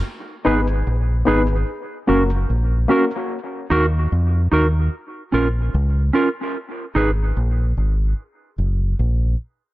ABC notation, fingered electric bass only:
X:1
M:4/4
L:1/8
Q:1/4=74
K:G#dor
V:1 name="Fingered electric bass" clef=bass
z G,,, A,,, G,,, z F,,, A,,, z | z D,, E,, D,, z A,,, C,, z | z G,,, A,,, G,,, z F,,, A,,, z |]